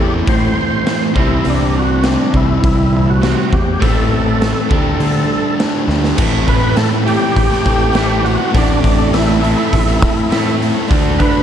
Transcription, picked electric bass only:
Already playing: E2
0.28 A2
1.16 C2
1.46 C2
2.34 C2
2.64 C2
3.53 E2
3.82 A1
4.71 D2
5.00 D3
5.88 D2
6.19 A1
6.47 A2
7.36 A1
7.66 A1
8.54 A1
8.84 A1
9.73 A1
10.02 A2
10.90 D2
11.20 D3

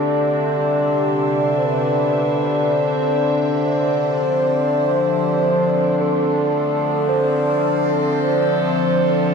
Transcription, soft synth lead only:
0.00 A4
0.56 G4
1.57 C5
1.65 B4
2.72 C5
3.81 C5
6.00 A4
7.08 C5
8.20 C5

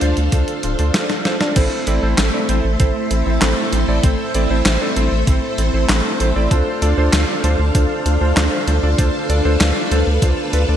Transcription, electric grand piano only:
0.02 D4 F4 A4 C5
0.33 D4 F4 A4 C5
0.64 D4 F4 A4 C5
0.79 D4 F4 A4 C5
0.95 D4 F4 A4 C5
1.26 D4 F4 A4 C5
1.41 D4 F4 A4 D5
1.56 C4 E4 A4 C5
1.87 C4 E4 A4 D5
2.03 C4 E4 A4 C5
2.34 C4 E4 A4 D5
2.49 C4 E4 A4 C5
2.80 C4 E4 A4 C5
3.11 C4 E4 A4 C5
3.26 C4 E4 A4 C5
3.42 C4 E4 A4 C5
3.73 C4 E4 A4 C5
3.88 C4 E4 A4 D5
4.04 C4 E4 A4 C5
4.35 C4 E4 A4 D5
4.50 C4 E4 A4 C5
4.81 C4 E4 A4 D5
4.97 C4 E4 A4 C5
5.27 C4 E4 A4 C5
5.58 C4 E4 A4 C5
5.74 C4 E4 A4 C5
5.89 C4 E4 A4 C5
6.20 C4 E4 A4 C5
6.36 C4 E4 A4 D5
6.51 D4 F4 A4 C5
6.82 D4 F4 A4 D5
6.98 D4 F4 A4 C5
7.29 D4 F4 A4 D5
7.44 D4 F4 A4 C5
7.75 D4 F4 A4 C5
8.06 D4 F4 A4 C5
8.21 D4 F4 A4 C5
8.37 D4 F4 A4 C5
8.68 D4 F4 A4 C5
8.83 D4 F4 A4 D5
8.99 D4 F4 A4 C5
9.30 D4 F4 A4 D5
9.45 D4 F4 A4 C5
9.76 D4 F4 A4 D5
9.92 D4 F4 A4 C5
10.22 D4 F4 A4 C5
10.53 D4 F4 A4 B4
10.69 D4 F4 A4 D5

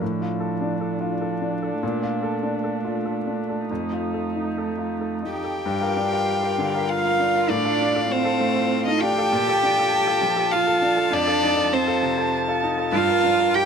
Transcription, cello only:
Already playing: F3
1.82 A3
5.33 G4
6.90 F4
7.49 D4
8.10 C4
8.88 D#4
9.01 G4
10.53 F4
11.14 D4
11.73 C4
12.94 F4
13.56 G4

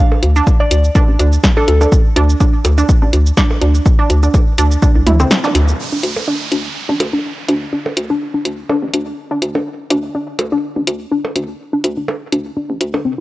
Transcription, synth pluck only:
0.36 D4
0.60 D4
0.95 D4
1.20 D4
1.57 D4
1.81 D4
2.16 D4
2.40 D4
2.78 D4
3.02 D4
3.37 D4
3.61 D4
3.99 D4
4.23 D4
4.58 D4
4.82 D4
5.06 E4
5.20 C4
5.44 D4
5.92 D4
6.28 D4
6.52 D4
6.89 D4
7.13 D4
7.49 D4
7.73 D4
8.10 D4
8.34 D4
8.69 D4
8.94 D4
9.31 D4
9.55 D4
9.90 D4
10.15 D4
10.52 D4
10.76 D4
11.11 D4
11.36 D4
11.73 D4
11.97 D4
12.32 D4
12.57 D4
12.94 D4
13.05 C4

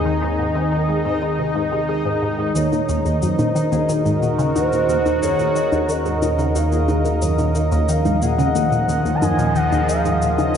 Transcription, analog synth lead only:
2.56 C#5
3.23 C5
3.89 A#4
4.56 C5
5.23 C#5
5.90 D#5
6.56 F5
7.56 D#5
7.89 F5
8.22 F#5
9.15 A#5
9.22 G#5
9.56 F#5
9.89 F5

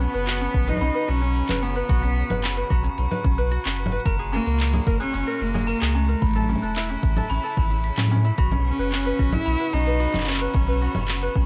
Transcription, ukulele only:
0.00 C#4
0.14 B4
0.27 F#4
0.41 C#4
0.68 B4
0.81 C#4
0.94 B4
1.08 F#4
1.22 C#4
1.49 B4
1.62 C#4
1.76 B4
1.89 F#4
2.03 C#4
2.30 B4
2.43 C#4
2.57 B4
2.70 F#4
2.83 C#4
3.11 B4
3.24 C#4
3.38 B4
3.51 F#4
3.65 C#4
3.92 B4
4.05 A#4
4.19 G#4
4.32 C#4
4.46 A#4
4.73 G#4
4.87 A#4
5.00 G#4
5.13 C#4
5.27 A#4
5.54 G#4
5.68 A#4
5.81 G#4
5.95 C#4
6.08 A#4
6.35 A4
6.49 C#4
6.63 A4
6.76 E4
6.90 C#4
7.17 A4
7.30 C#4
7.44 A4
7.57 E4
7.71 E4
7.98 C#4
8.11 C#4
8.25 E4
8.38 F#4
8.52 C#4
8.79 B4
8.92 C#4
9.06 B4
9.19 F#4
9.33 C#4
9.60 B4
9.73 C#4
9.87 B4
10.00 F#4
10.14 C#4
10.41 B4
10.54 C#4
10.68 B4
10.82 F#4
10.95 C#4
11.22 B4
11.36 C#4

